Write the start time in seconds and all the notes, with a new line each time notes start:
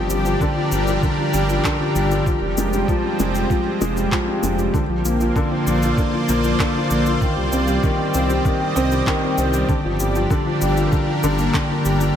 Already playing: F3 G3 C4 D4 G4 D5
0.10 G1 G3, shaker
0.24 F3 A#4, shaker
0.41 D3, kick, shaker
0.56 F3
0.72 G1 G3, shaker
0.87 F3, shaker
1.03 D3, kick, shaker
1.18 F3
1.34 G1 G3, shaker
1.49 F3, shaker
1.64 D3, kick, clap, shaker
1.80 F3
1.95 G1 G3, shaker
2.11 F3, shaker
2.26 F3, kick, shaker
2.42 F1 G3
2.51 C4
2.57 F1 G#3, shaker
2.73 G3, shaker
2.88 F3, kick, shaker
3.04 G3
3.19 F1 G#3, shaker
3.35 G3, shaker
3.50 F3, kick, shaker
3.66 G3
3.81 F1 G#3, shaker
3.97 G3, shaker
4.12 F3, kick, clap, shaker
4.28 G3
4.43 F1 G#3, shaker
4.59 G3, shaker
4.74 D3 A#3, kick, shaker
4.89 A#1 F3
5.05 A#1 A#3, shaker
5.15 F4 D5
5.21 F3 C5, shaker
5.36 D3, kick, shaker
5.52 F3
5.67 A#1 A#3, shaker
5.82 F3, shaker
5.98 D3, kick, shaker
6.13 F3
6.29 A#1 A#3, shaker
6.44 F3, shaker
6.59 D3, kick, clap, shaker
6.75 F3
6.91 A#1 A#3, shaker
7.06 F3, shaker
7.21 D#3 C4, kick, shaker
7.37 C2 G3
7.48 G4
7.52 C2 C4, shaker
7.68 G3, shaker
7.83 D#3, kick, shaker
7.99 G3
8.14 C2 C4, shaker
8.26 G3 D#5, shaker
8.45 D#3, kick, shaker
8.61 G3
8.76 C2 C4, shaker
8.92 G3, shaker
9.07 D#3, kick, clap, shaker
9.23 G3
9.38 C2 C4, shaker
9.53 G3, shaker
9.69 D3 G3, kick, shaker
9.83 G1 F3 D4
10.00 G1 G3, shaker
10.15 F3, shaker
10.30 D3, kick, shaker
10.42 F3 A#4
10.61 G1 G3, shaker
10.77 F3, shaker
10.92 D3, kick, shaker
11.08 F3
11.23 G1 D3, shaker
11.39 A#3, shaker
11.54 D3, kick, clap, shaker
11.70 F3
11.85 G1 G3, shaker
12.01 G3, shaker